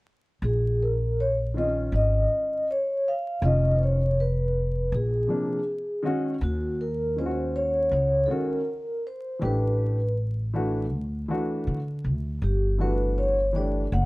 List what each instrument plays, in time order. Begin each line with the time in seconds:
0.42 upright bass A#1, vibraphone G#4
0.83 vibraphone A#4
1.20 vibraphone C#5
1.54 grand piano D#3 G#3 C4 F4
1.58 vibraphone D#5
1.62 grand piano C#4
1.92 upright bass G#1, vibraphone D#5
2.71 vibraphone C#5
3.08 vibraphone F5
3.41 upright bass F1, grand piano D#3 G#3 C#4 F4, vibraphone D#5
3.76 vibraphone C5
3.83 vibraphone C#5
4.20 vibraphone B4
4.92 upright bass A#1, vibraphone G#4
5.27 grand piano C3 F3 A#3 D4
6.03 grand piano D#3 G#3 C#4 F#4
6.41 upright bass D#2, vibraphone F#4
6.81 vibraphone A#4
7.16 grand piano D#3 G#3 C#4 F4, vibraphone C5
7.26 grand piano F#4
7.56 vibraphone C#5
7.91 upright bass C#2, vibraphone C#5
8.26 grand piano D#3 G#3 C#4, vibraphone A4
8.31 grand piano F#4, vibraphone A#4
9.07 vibraphone C5
9.39 upright bass A1, grand piano E3 A3 D4 G4
9.45 vibraphone B4
10.53 grand piano E3 A3 D4 F#4
10.92 upright bass D2
11.28 grand piano E3 A3 D4 F#4
11.67 upright bass D3
12.04 upright bass D2
12.42 upright bass G1, vibraphone G4
12.78 grand piano E3 A3 D4 F#4, vibraphone B4
13.18 vibraphone C#5
13.53 grand piano E3 A3 D4 G4, vibraphone D5
13.92 upright bass F#1, vibraphone F#5